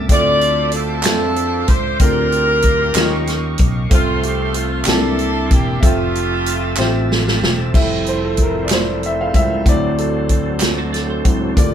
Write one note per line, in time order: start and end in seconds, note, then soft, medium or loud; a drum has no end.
0.00 0.10 C3 medium
0.00 0.11 A#3 medium
0.00 0.09 C4 medium
0.00 0.09 D4 medium
0.00 0.10 A4 medium
0.00 0.09 E5 medium
0.00 1.98 E5 medium
0.00 1.98 D6 medium
0.09 1.05 D2 medium
0.09 1.01 D3 medium
0.09 0.77 C4 medium
0.09 0.77 D4 medium
0.09 0.77 F4 medium
0.09 1.99 F4 medium
0.09 0.74 F4 medium
0.09 0.77 A4 medium
0.09 0.73 A4 medium
0.09 1.99 C5 medium
0.09 0.70 D5 loud
0.09 0.77 E5 medium
0.09 kick loud
0.09 closed hi-hat loud
0.41 closed hi-hat soft
0.72 1.69 A4 medium
0.72 closed hi-hat medium
0.76 1.66 C4 medium
0.76 1.66 F4 medium
1.03 1.64 F2 medium
1.03 1.72 C4 medium
1.03 1.72 D4 medium
1.03 1.73 F4 medium
1.03 1.73 A4 medium
1.03 1.73 E5 medium
1.03 snare loud
1.03 clap medium
1.03 closed hi-hat medium
1.36 closed hi-hat soft
1.68 1.97 C#2 medium
1.68 2.00 C5 medium
1.68 kick medium
1.68 closed hi-hat medium
2.00 2.92 D2 loud
2.00 2.92 D3 medium
2.00 2.68 C4 medium
2.00 2.68 D4 medium
2.00 2.68 F4 medium
2.00 3.56 F4 medium
2.00 2.68 G4 medium
2.00 3.57 G4 medium
2.00 3.55 A#4 loud
2.00 2.95 A#4 medium
2.00 2.69 A#4 medium
2.00 2.95 D5 medium
2.00 2.95 G5 medium
2.00 2.95 C6 medium
2.00 kick loud
2.00 closed hi-hat medium
2.32 closed hi-hat soft
2.62 kick medium
2.62 closed hi-hat medium
2.94 3.55 D#2 medium
2.94 3.87 D#3 medium
2.94 3.63 C#4 medium
2.94 3.63 D#4 medium
2.94 3.64 F4 medium
2.94 3.90 G4 medium
2.94 3.64 G4 medium
2.94 3.64 A#4 medium
2.94 3.90 D#5 medium
2.94 4.85 F5 medium
2.94 3.90 C#6 medium
2.94 snare loud
2.94 clap medium
2.94 closed hi-hat medium
3.27 snare soft
3.27 closed hi-hat soft
3.58 3.89 B1 medium
3.58 kick loud
3.58 closed hi-hat medium
3.90 4.83 C2 medium
3.90 4.83 C3 medium
3.90 4.58 A3 medium
3.90 4.83 A3 medium
3.90 4.59 C4 medium
3.90 4.83 C4 medium
3.90 4.59 F4 medium
3.90 4.22 F4 loud
3.90 4.86 A4 medium
3.90 4.59 A4 medium
3.90 4.86 C5 medium
3.90 4.60 C5 medium
3.90 5.80 C6 medium
3.90 kick loud
3.90 closed hi-hat medium
4.23 4.55 G4 medium
4.23 closed hi-hat soft
4.54 4.87 F4 medium
4.54 closed hi-hat medium
4.85 5.53 C2 medium
4.85 5.78 C3 medium
4.85 5.81 A#3 medium
4.85 5.55 A#3 medium
4.85 5.54 C4 medium
4.85 5.54 D4 medium
4.85 5.78 D4 medium
4.85 5.54 E4 medium
4.85 5.78 E4 medium
4.85 5.55 G4 medium
4.85 5.51 A4 loud
4.85 5.81 D5 medium
4.85 7.71 E5 medium
4.85 snare loud
4.85 clap medium
4.85 closed hi-hat medium
5.19 closed hi-hat soft
5.51 5.80 E1 medium
5.51 5.83 G4 medium
5.51 kick loud
5.51 closed hi-hat medium
5.80 6.74 F1 loud
5.80 6.49 C4 medium
5.80 6.50 F4 medium
5.80 7.72 F4 medium
5.80 6.50 G4 medium
5.80 7.73 G4 medium
5.80 6.50 A4 medium
5.80 6.49 E5 medium
5.80 7.72 A5 medium
5.80 kick loud
5.80 closed hi-hat medium
5.84 7.07 A3 medium
5.84 7.07 C4 medium
5.84 7.07 F4 medium
6.15 closed hi-hat soft
6.46 closed hi-hat medium
6.77 7.38 A1 medium
6.77 7.46 C4 medium
6.77 7.46 F4 medium
6.77 7.46 G4 medium
6.77 7.46 C5 medium
6.77 7.46 E5 medium
6.77 snare medium
6.77 clap loud
7.12 snare medium
7.28 snare medium
7.42 7.71 E1 medium
7.42 snare medium
7.72 9.30 F1 medium
7.72 9.62 F3 medium
7.72 9.64 F3 medium
7.72 8.65 G3 soft
7.72 11.53 A3 medium
7.72 8.66 A3 soft
7.72 9.64 C4 medium
7.72 9.62 E4 soft
7.72 9.64 E4 medium
7.72 8.66 E4 medium
7.72 11.52 A4 medium
7.72 9.62 C5 medium
7.72 8.07 E5 medium
7.72 kick loud
7.72 crash medium
8.06 8.23 C5 medium
8.06 closed hi-hat soft
8.25 8.40 A4 medium
8.37 kick medium
8.37 closed hi-hat medium
8.42 8.65 A#4 medium
8.65 8.71 D5 medium
8.65 clap medium
8.69 9.04 C5 medium
8.69 snare loud
8.69 closed hi-hat medium
9.03 9.20 E5 medium
9.03 closed hi-hat soft
9.21 9.26 F5 medium
9.33 9.63 C#2 medium
9.33 9.62 G3 soft
9.33 9.62 A3 soft
9.33 9.62 E4 soft
9.33 9.67 E5 medium
9.33 kick medium
9.33 closed hi-hat medium
9.65 11.21 D2 medium
9.65 11.55 F#3 medium
9.65 11.23 F#3 medium
9.65 11.55 F#3 medium
9.65 11.55 C4 medium
9.65 11.24 C4 soft
9.65 11.74 D4 medium
9.65 11.24 E4 medium
9.65 11.55 C5 medium
9.65 10.00 D5 loud
9.65 kick loud
9.65 closed hi-hat medium
9.98 10.27 A4 medium
9.98 closed hi-hat soft
10.29 kick medium
10.29 closed hi-hat medium
10.60 snare medium
10.60 clap medium
10.60 closed hi-hat medium
10.78 10.93 F#4 medium
10.78 10.93 A4 medium
10.93 11.08 D5 medium
10.93 snare soft
10.93 closed hi-hat soft
11.10 11.55 A4 medium
11.10 11.55 C5 medium
11.24 11.54 C#2 medium
11.24 11.53 F#3 soft
11.24 11.54 C4 soft
11.24 11.54 E4 medium
11.24 kick medium
11.24 closed hi-hat medium
11.55 11.74 D2 loud
11.55 11.74 F3 medium
11.55 11.74 G3 medium
11.55 11.74 A3 medium
11.55 11.74 A#3 soft
11.55 11.74 F4 medium
11.55 11.74 G4 medium
11.55 11.74 D5 medium
11.55 kick loud
11.55 closed hi-hat medium